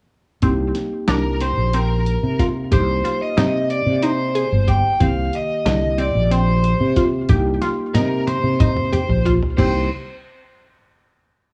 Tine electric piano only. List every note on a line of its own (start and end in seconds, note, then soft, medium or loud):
0.42 2.68 A#3 medium
0.42 2.68 D#4 medium
0.42 2.68 G4 medium
2.71 4.96 A#3 medium
2.71 4.97 D#4 soft
2.71 4.97 G4 medium
5.00 7.25 D#3 soft
5.00 7.25 A#3 medium
5.00 7.26 G4 medium
7.29 9.54 A#3 medium
7.29 9.55 D#4 medium
7.29 9.55 G4 medium
9.58 9.88 A#3 medium
9.58 9.88 D#4 medium
9.58 9.88 G4 medium